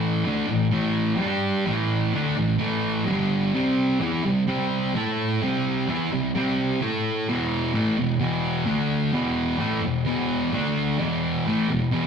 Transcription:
Already playing: A2 E3 A3
0.25 D3 A3 D4
0.48 A2 E3
0.71 A2 E3 A3
1.20 G3 D4 G4
1.65 A2 E3 A3
2.13 D3 A3 D4
2.36 A2 E3
2.58 A2 E3 A3
3.06 G2 D3 G3
3.54 C3 G3 C4
4.00 E3 B3 E4
4.25 C3 G3
4.48 C3 G3 C4
4.95 A3 E4 A4
5.41 C3 G3 C4
5.88 E3 B3 E4
6.12 C3 G3
6.35 C3 G3 C4
6.82 A3 E4 A4
7.28 E2 B2 E3
7.74 A2 E3 A3
7.98 E2 B2
8.19 E2 B2 E3
8.66 D3 A3 D4
9.12 E2 B2 E3
9.58 A2 E3 A3
9.82 E2 B2
10.05 E2 B2 E3
10.52 D3 A3 D4
10.98 E2 B2 E3
11.47 A2 E3 A3
11.68 E2 B2
11.91 E2 B2 E3

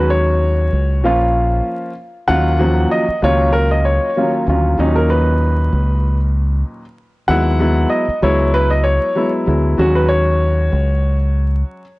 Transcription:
Already playing: D#2 F#3 G#3 C#4 F#4
0.10 C#5
0.73 C#2
1.04 A#1 F3 A#3 C#4 F4
2.28 D#2 F#3 A#3 C#4 F4 F#5
2.59 D#2 F3 F#3 A#3 C#4
2.91 D#5
3.08 muted fingered electric bass stroke
3.22 C#2 D#2 F#3 A#3 C#4 F4 C#5
3.53 A#4
3.71 D#5
3.85 C#5
4.16 D#2 F#3 A#3 C#4 F4
4.47 D2 D#2 F#3 A#3 C#4 F4
4.78 D#2 A#2 F#3 C#4 D#4
4.96 A#4
5.10 B4
5.73 C#2
7.28 D#2 F#3 G#3 B3 E4 F#5
7.59 F#3 G#3 B3 E4
7.90 D#5
8.08 muted fingered electric bass stroke
8.22 C#2 F#3 G#3 B3 E4 C#5
8.54 B4
8.70 D#5
8.84 C#5
9.15 F#3 G#3 B3 E4
9.46 D2 F#3 G#3 B3 E4
9.78 D#2 F#3 G#3 C#4 F#4
9.95 B4
10.08 C#5
10.73 C#2

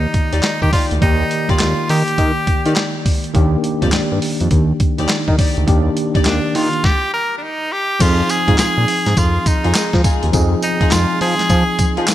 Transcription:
Already playing: D#3 A#3 D#4 G4 D5
0.14 kick, closed hi-hat
0.32 D#2 D#4 G4 D5, closed hi-hat
0.43 D#4, snare, clap, closed hi-hat
0.62 D#3 G4, kick
0.72 D#4 F4 G4 D5, kick, open hi-hat
0.91 D2, closed hi-hat
1.00 D#2 D#3 A#3 D#4 G4 D5, kick, closed hi-hat
1.31 closed hi-hat
1.49 D#2 D#4 F4 G4 D5, kick, closed hi-hat
1.59 D#2, snare, clap, closed hi-hat
1.89 D#3 G4, open hi-hat
2.08 closed hi-hat
2.18 D#3, kick, closed hi-hat
2.47 D#3, kick, closed hi-hat
2.65 D#3 D#4 G4 D5, closed hi-hat
2.76 snare, clap, closed hi-hat
3.06 kick, open hi-hat
3.24 closed hi-hat
3.33 D#2 D#3 A#3 D4 G4, kick, closed hi-hat
3.64 closed hi-hat
3.82 F2 D#4 G4 D5, kick, closed hi-hat
3.92 G2, snare, clap, closed hi-hat
4.12 G2
4.22 open hi-hat
4.40 F2, closed hi-hat
4.51 D#2, kick, closed hi-hat
4.80 kick, closed hi-hat
4.98 D#2 D#4 G4 D5, closed hi-hat
5.09 snare, clap, closed hi-hat
5.28 D#3, kick
5.38 D#4 G4 D5, kick, open hi-hat
5.57 D2, closed hi-hat
5.67 D#2 D#3 A#3 D4 G4, kick, closed hi-hat
5.97 closed hi-hat
6.15 D#2 D#4 G4 D5, kick, closed hi-hat
6.25 D#2 D4, snare, clap, closed hi-hat
6.55 D#3 F4, open hi-hat
6.73 closed hi-hat
6.84 G4, kick, snare
7.13 A#4
7.38 D4
7.43 D#4
7.72 G4
7.99 F2 F3 C4 D#4 F4 G#4, kick, closed hi-hat, crash, tambourine
8.29 G#4, closed hi-hat, tambourine
8.48 G#2 D#4 F4 G#4, kick, closed hi-hat
8.58 A#2 G#4, snare, clap, closed hi-hat, tambourine
8.78 A#2
8.88 open hi-hat
9.06 G#2, snare, closed hi-hat
9.17 F2 F4, kick, closed hi-hat, tambourine
9.46 D#4, kick, closed hi-hat, tambourine
9.64 F2 D#4 F4 G#4, closed hi-hat
9.75 snare, clap, closed hi-hat, tambourine
9.93 F3, kick, snare
10.04 D#4 F4 G#4, kick, closed hi-hat, tambourine
10.23 D#2, closed hi-hat
10.32 F2 F3 C4 D#4 G#4, kick, closed hi-hat, tambourine
10.62 D#4, closed hi-hat, tambourine
10.81 F2 D#4 F4 G#4, kick, closed hi-hat
10.91 F2 F4, snare, clap, closed hi-hat, tambourine
11.21 F3 G#4, open hi-hat
11.39 snare, closed hi-hat
11.49 F3, kick, closed hi-hat, tambourine
11.79 F3, kick, closed hi-hat, tambourine
11.97 F3 D#4 F4 G#4, closed hi-hat
12.08 snare, clap, closed hi-hat, tambourine

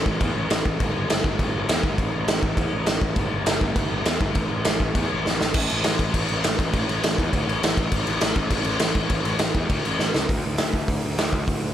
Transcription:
0.06 A1, kick
0.21 E2, kick, crash
0.36 A1
0.50 A1, snare, crash
0.66 A1, kick
0.80 G1, kick, crash
0.94 G1
1.09 G1, snare, crash
1.24 G1, kick
1.39 G1, kick, crash
1.55 G1
1.69 E2, snare, crash
1.83 G1, kick
1.98 A1, kick, crash
2.14 A1
2.28 A1, snare, crash
2.43 A1, kick
2.57 E2, kick, crash
2.73 A1
2.86 A1, snare, crash
3.02 A1, kick
3.16 G1, kick, crash
3.32 G1
3.46 G1, snare, crash
3.61 G1, kick
3.76 G1, kick, crash
3.92 G1
4.05 E2, snare, crash
4.21 G1, kick
4.35 A1, kick, crash
4.51 A1
4.65 A1, snare, crash
4.80 A1, kick
4.95 E2, kick, crash
5.13 A1
5.26 A1, snare
5.41 A1, snare
5.54 A1, kick, crash
5.70 A1, crash
5.84 A1, snare, crash
5.99 A1, kick, crash
6.14 A1, kick, crash
6.29 A1, crash
6.44 A1, snare, crash
6.59 A1, kick, crash
6.73 A1, kick, crash
6.89 A1, crash
7.03 A1, snare, crash
7.18 E2, kick, crash
7.33 D2, kick, crash
7.48 A1, crash
7.62 A1, snare, crash
7.77 A1, kick, crash
7.92 A1, kick, crash
8.07 A1, crash
8.21 A1, snare, crash
8.36 A1, kick, crash
8.50 A1, kick, crash
8.64 A1, crash
8.79 A1, snare, crash
8.95 A1, kick, crash
9.10 A1, kick, crash
9.25 A1, crash
9.39 A1, snare, crash
9.54 E2, kick, crash
9.70 D2, kick, crash
9.85 A1, crash
9.99 A1, snare
10.14 C#2, snare
10.29 D2, kick, open hi-hat
10.46 D2
10.58 D2, snare, open hi-hat
10.73 kick
10.88 D2, kick, open hi-hat
11.05 D2
11.18 D2, snare, open hi-hat
11.33 kick
11.47 D2, kick, open hi-hat
11.64 D2

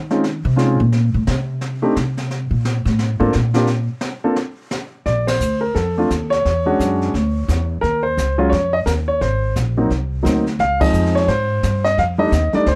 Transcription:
Already playing: D#3
0.10 G#3 C4 C#4 D#4 F4, snare
0.24 brush sweep, snare
0.45 C3
0.56 G#3 C4 C#4 D#4 F4, snare
0.80 A#2
0.92 brush sweep, snare
1.14 A2
1.27 C3, snare
1.61 brush sweep, snare
1.82 A3 C4 D4 D#4 G4
1.96 C3, snare
2.17 snare
2.31 brush sweep, snare
2.51 A#2
2.65 snare
2.85 A2, snare
2.99 brush sweep, snare
3.20 G#2 A#3 C4 D4 F4 A4
3.33 A#2, snare
3.54 A#3 C4 D4 F4 G4, snare
3.67 brush sweep, snare
4.01 snare
4.24 A#3 C4 D4 F4 A4
4.36 brush sweep, snare
4.71 snare
5.06 A#1 D5, brush sweep, kick, snare
5.27 C5, snare, ride
5.40 D2, hi-hat pedal
5.61 A#4
5.75 F2 A4, brush sweep, kick, snare
5.97 A3 C4 D4 F4
6.10 D#2, kick, snare, hi-hat pedal
6.30 C#5, snare
6.45 E2, brush sweep, kick, snare
6.66 G#3 C#4 D4 F#4
6.79 F#2, kick, snare, hi-hat pedal
7.01 snare
7.14 D2, brush sweep, kick, snare
7.48 E2, kick, snare, hi-hat pedal
7.81 D#2 A#4, brush sweep, kick, snare
8.03 C5
8.17 C#2, kick, snare, hi-hat pedal
8.38 F#3 G#3 C#4 F4
8.49 F2 C#5, brush sweep, kick, snare
8.73 D#5
8.86 D#2 A#4, kick, snare, hi-hat pedal
9.08 C#5
9.21 G#1 C5, brush sweep, kick, snare
9.56 A#1, kick, snare, hi-hat pedal
9.77 F#3 A#3 C4 D#4
9.90 C2, brush sweep, kick, snare
10.23 D2 F#3 A#3 C4 D#4, kick, snare, hi-hat pedal
10.46 snare
10.59 C#2 F5, brush sweep, kick, snare
10.80 F3 G#3 C4 D#4 D#5, kick, ride
10.93 F2, hi-hat pedal
11.06 snare
11.15 C#5, snare
11.28 G#2 C5, brush sweep, kick, snare
11.63 G2, kick, snare, hi-hat pedal
11.84 D#5, snare
11.98 F2 F5, brush sweep, kick, snare
12.18 G3 A3 D4 D#4 D#5
12.32 D#2, kick, snare, hi-hat pedal
12.53 G3 A3 D4 D#4 D5, muted upright bass stroke, snare
12.66 D2 C5, brush sweep, kick, snare

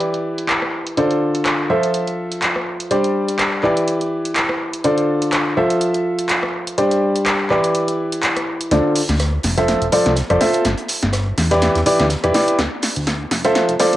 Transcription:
Already playing: E3 E4 G4 B4 D5
0.00 closed hi-hat
0.14 closed hi-hat
0.38 closed hi-hat
0.49 clap, closed hi-hat
0.62 cross-stick
0.87 closed hi-hat
0.97 D3 F4 A4 C5 D5, closed hi-hat
1.11 closed hi-hat
1.35 closed hi-hat
1.46 cross-stick, clap, closed hi-hat
1.70 F3 F4 A4 C5 E5
1.83 closed hi-hat
1.94 closed hi-hat
2.07 closed hi-hat
2.32 closed hi-hat
2.42 clap, closed hi-hat
2.56 cross-stick
2.80 closed hi-hat
2.91 G3 D4 G4 C5 D5, closed hi-hat
3.04 closed hi-hat
3.28 closed hi-hat
3.39 cross-stick, clap, closed hi-hat
3.63 E3 E4 G4 B4 D5, clap
3.77 closed hi-hat
3.88 closed hi-hat
4.01 closed hi-hat
4.25 closed hi-hat
4.36 clap, closed hi-hat
4.49 cross-stick
4.74 closed hi-hat
4.84 D3 F4 A4 C5 D5, closed hi-hat
4.98 closed hi-hat
5.22 closed hi-hat
5.33 cross-stick, clap, closed hi-hat
5.57 F3 F4 A4 C5 E5
5.70 closed hi-hat
5.81 closed hi-hat
5.94 closed hi-hat
6.19 closed hi-hat
6.29 clap, closed hi-hat
6.43 cross-stick
6.67 closed hi-hat
6.78 G3 D4 G4 C5 D5, closed hi-hat
6.91 closed hi-hat
7.16 closed hi-hat
7.26 cross-stick, clap, closed hi-hat
7.50 E3 E4 G4 B4 D5, cross-stick, clap
7.64 closed hi-hat
7.75 closed hi-hat
7.88 closed hi-hat
8.12 closed hi-hat
8.23 clap, closed hi-hat
8.37 cross-stick, closed hi-hat
8.61 closed hi-hat
8.71 D2 D3 F4 A4 C5 D5, snare, closed hi-hat
8.96 open hi-hat
9.09 D2, snare, closed hi-hat
9.19 cross-stick, snare, closed hi-hat
9.43 F1, snare, closed hi-hat, open hi-hat
9.57 F3 F4 A4 C5 E5, snare, closed hi-hat
9.68 snare, closed hi-hat
9.82 F1, closed hi-hat
9.92 F3 F4 A4 C5 D5, closed hi-hat, open hi-hat
10.06 C2, snare, closed hi-hat
10.16 snare, closed hi-hat
10.30 F1 F3 F4 A4 C5 D5, cross-stick, closed hi-hat
10.41 F4 A4 C5 E5, snare, closed hi-hat, open hi-hat
10.54 closed hi-hat
10.65 G1, snare, closed hi-hat
10.78 closed hi-hat
10.89 snare, closed hi-hat, open hi-hat
11.03 G1, snare, closed hi-hat
11.13 cross-stick, snare, closed hi-hat
11.38 E2, snare, closed hi-hat, open hi-hat
11.51 E3 E4 G4 B4 D5, snare, closed hi-hat
11.62 snare, closed hi-hat
11.75 E2, snare, closed hi-hat
11.86 E3 E4 G4 B4 D5, closed hi-hat, open hi-hat
11.99 D2, snare, closed hi-hat
12.10 snare, closed hi-hat
12.24 E2 E3 E4 G4 B4 D5, cross-stick, closed hi-hat
12.34 E4 G4 B4 D5, snare, closed hi-hat, open hi-hat
12.48 closed hi-hat
12.59 D2, snare, closed hi-hat
12.82 snare, open hi-hat
12.96 D2, closed hi-hat
13.07 snare, closed hi-hat
13.31 F1, snare, closed hi-hat, open hi-hat
13.44 F3 F4 A4 C5 E5, snare, closed hi-hat
13.55 snare, closed hi-hat
13.69 F1, closed hi-hat
13.80 F3 F4 A4 C5 D5, snare, closed hi-hat, open hi-hat
13.93 C2, closed hi-hat

